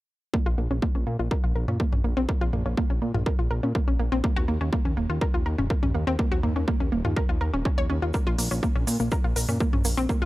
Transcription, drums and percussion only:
0.34 kick
0.82 kick
1.31 kick
1.68 mid tom
1.80 kick
1.93 mid tom
2.29 kick
2.53 mid tom
2.77 kick
3.15 mid tom
3.26 kick
3.75 kick
4.24 kick
4.73 kick
5.21 kick
5.58 mid tom
5.70 kick
5.83 mid tom
6.19 kick
6.43 mid tom
6.68 kick
7.05 mid tom
7.17 kick
7.65 kick
8.14 kick, shaker
8.38 open hi-hat, shaker
8.51 shaker
8.63 kick, shaker
8.87 open hi-hat, shaker
9.00 shaker
9.11 kick, shaker
9.36 open hi-hat, shaker
9.48 mid tom, shaker
9.60 kick, shaker
9.73 mid tom
9.85 open hi-hat, shaker
9.97 shaker
10.09 kick, shaker

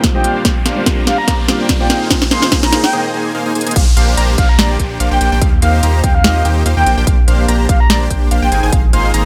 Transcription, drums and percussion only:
0.04 kick, snare, closed hi-hat
0.24 closed hi-hat
0.45 kick, snare, closed hi-hat
0.66 snare, closed hi-hat
0.86 kick, snare, closed hi-hat
1.07 snare, closed hi-hat
1.28 kick, snare, closed hi-hat
1.48 snare, closed hi-hat
1.69 kick, snare, closed hi-hat
1.90 snare, closed hi-hat
2.10 kick, snare, closed hi-hat
2.22 snare
2.31 snare, closed hi-hat
2.42 snare
2.52 kick, snare, closed hi-hat
2.63 snare
2.73 snare, closed hi-hat
2.84 snare
3.55 closed hi-hat
3.61 closed hi-hat
3.67 closed hi-hat
3.71 closed hi-hat
3.76 kick, closed hi-hat, crash
3.97 closed hi-hat
4.17 closed hi-hat
4.38 kick, closed hi-hat
4.59 snare, closed hi-hat
4.79 kick, closed hi-hat
5.00 closed hi-hat
5.21 closed hi-hat
5.42 kick, closed hi-hat
5.62 closed hi-hat
5.83 closed hi-hat
6.04 kick, closed hi-hat
6.24 snare, closed hi-hat
6.45 closed hi-hat
6.66 closed hi-hat
6.86 closed hi-hat
7.07 kick, closed hi-hat
7.28 closed hi-hat
7.48 closed hi-hat
7.69 kick, closed hi-hat
7.90 snare, closed hi-hat
8.10 kick, closed hi-hat
8.31 closed hi-hat
8.52 closed hi-hat
8.72 kick, closed hi-hat
8.93 closed hi-hat
9.14 closed hi-hat

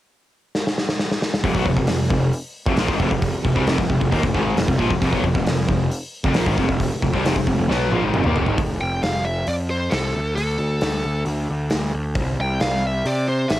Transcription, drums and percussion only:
0.55 snare
0.67 snare
0.78 snare
0.89 snare
0.99 snare
1.12 snare
1.22 snare
1.34 snare
1.44 kick, open hi-hat
1.55 kick
1.66 kick
1.77 kick
1.87 snare, open hi-hat
2.10 kick
2.33 open hi-hat
2.66 kick
2.77 snare, open hi-hat
2.88 kick
3.00 kick
3.11 kick
3.22 kick, open hi-hat
3.45 kick
3.56 kick
3.67 snare, open hi-hat
3.78 kick
3.90 kick
4.01 kick
4.12 kick, open hi-hat
4.23 kick
4.35 kick
4.57 snare, open hi-hat
4.68 kick
4.79 kick
4.90 kick
5.02 kick, open hi-hat
5.13 kick
5.24 kick
5.35 kick
5.46 snare, open hi-hat
5.69 kick
5.91 open hi-hat
6.24 kick
6.34 snare, open hi-hat
6.46 kick
6.58 kick
6.69 kick
6.80 kick, open hi-hat
7.02 kick
7.14 kick
7.25 snare, open hi-hat
7.36 kick
7.47 kick
7.71 snare
7.92 high tom
8.14 mid tom
8.24 mid tom
8.36 floor tom
8.46 floor tom
8.58 kick, open hi-hat
9.03 snare, open hi-hat
9.47 open hi-hat
9.91 snare, open hi-hat
10.37 open hi-hat
10.81 snare, open hi-hat
11.26 open hi-hat
11.70 snare, open hi-hat
12.15 kick, open hi-hat
12.60 snare, open hi-hat
13.05 open hi-hat
13.50 snare, open hi-hat

